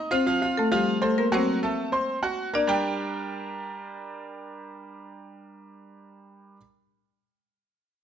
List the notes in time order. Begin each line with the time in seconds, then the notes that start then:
0.11 C4 F4 C5 F5 F6
0.26 F3 F4 F5
0.42 F4 F5 F6
0.57 A3 A4
0.72 F3 G3 F4 G4 F5
1.02 A3 C4 A4 C5 C6
1.18 A#3 A#4
1.32 F#3 C4 F#4 C5 F#5
1.63 A3 A4 A5
1.92 C4 C5 C6
2.23 F#4 F#5 F#6
2.53 A#3 D4 A#4 D5 A#5
2.67 G3 D4 G4 A#4 D5 G5